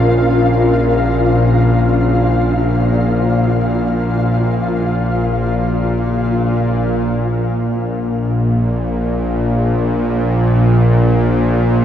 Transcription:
0.00 6.80 A#1 medium
0.00 6.80 A#2 medium
0.00 6.84 C#4 medium
0.00 6.83 F4 medium
0.00 6.84 F4 medium
0.00 6.83 A#4 medium
0.00 6.84 F5 medium
6.81 11.85 A#1 medium
6.81 11.85 A#2 medium

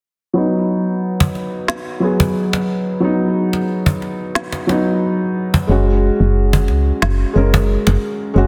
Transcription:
0.33 1.97 F#3 medium
0.33 1.98 B3 medium
0.33 1.99 D#4 medium
1.20 cajon bass medium
1.35 cajon slap soft
1.68 snare medium
2.00 2.97 F#3 medium
2.00 2.98 B3 medium
2.04 2.99 G#4 medium
2.20 cajon bass medium
2.53 cajon slap medium
3.00 4.64 F#3 medium
3.00 4.65 B3 medium
3.04 4.66 D#4 medium
3.53 cajon slap soft
3.86 cajon bass medium
4.02 cajon slap soft
4.35 snare medium
4.52 cajon slap medium
4.67 5.64 F#3 medium
4.67 5.65 B3 medium
4.67 cajon slap medium
4.71 5.66 D#4 medium
5.54 cajon bass medium
5.67 6.10 F#1 medium
5.67 7.31 G#3 medium
5.67 7.32 C#4 medium
5.67 7.33 F#4 medium
6.20 6.70 F#1 medium
6.53 cajon bass medium
6.68 6.92 C#2 medium
6.68 cajon slap soft
7.02 7.25 F#1 medium
7.02 snare medium
7.33 7.77 F#1 loud
7.33 8.31 G#3 medium
7.33 8.32 C#4 medium
7.37 8.33 A#4 medium
7.54 cajon bass medium
7.87 7.97 F#1 loud
7.87 cajon slap medium
8.34 8.47 F#1 medium
8.34 8.47 G#3 medium
8.34 8.47 C#4 medium
8.34 8.47 F#4 medium

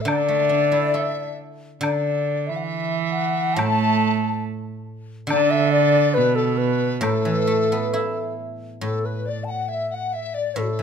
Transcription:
0.01 1.80 D3 medium
0.01 0.11 E5 medium
0.07 1.35 D3 medium
0.07 0.96 D5 medium
0.07 1.40 D5 loud
0.07 high woodblock medium
0.28 2.05 A3 soft
0.49 2.27 D4 soft
0.72 2.49 E4 soft
0.94 2.71 A4 soft
0.94 1.39 E5 medium
0.94 low woodblock soft
1.81 3.57 D3 medium
1.81 2.51 D3 medium
1.81 2.48 D5 medium
1.81 2.50 D5 medium
1.81 high woodblock medium
2.47 3.60 E3 medium
2.47 3.10 E5 medium
2.47 2.58 E5 medium
2.56 2.65 F#5 medium
2.64 3.59 E5 medium
3.11 3.56 F#5 medium
3.54 5.29 A2 medium
3.54 4.43 A5 loud
3.54 4.45 A5 medium
3.59 4.45 A3 medium
3.59 high woodblock medium
5.27 7.01 D3 medium
5.27 5.52 D5 loud
5.27 high woodblock medium
5.31 6.18 D3 loud
5.51 5.72 E5 loud
5.51 5.73 E5 loud
5.71 6.15 D5 loud
5.71 6.16 D5 medium
6.14 7.05 B2 medium
6.14 6.37 B4 loud
6.14 6.36 B4 loud
6.35 6.59 A4 medium
6.35 6.60 A4 medium
6.58 7.02 B4 loud
6.58 7.01 B4 medium
7.01 8.80 A2 medium
7.01 8.38 A2 medium
7.01 8.33 A4 medium
7.01 8.34 A4 loud
7.01 high woodblock medium
7.25 9.05 E3 medium
7.47 9.27 A3 soft
7.72 9.50 B3 medium
7.93 9.71 E4 medium
7.93 low woodblock soft
8.81 10.55 A2 medium
8.81 9.03 A4 medium
8.81 9.07 A4 medium
9.04 9.27 B4 medium
9.04 9.31 B4 medium
9.26 9.46 D5 medium
9.44 9.70 F#5 medium
9.44 9.52 A5 medium
9.51 9.71 F#5 medium
9.69 9.90 E5 medium
9.69 9.96 E5 medium
9.90 10.14 F#5 medium
9.95 10.17 F#5 medium
10.13 10.36 E5 medium
10.13 10.40 E5 medium
10.34 10.57 D5 medium
10.34 10.60 D5 medium
10.56 10.83 A2 medium
10.56 10.64 A4 medium
10.56 10.83 A4 medium
10.63 10.72 F#4 medium
10.70 10.83 A4 medium
10.79 10.83 E3 soft

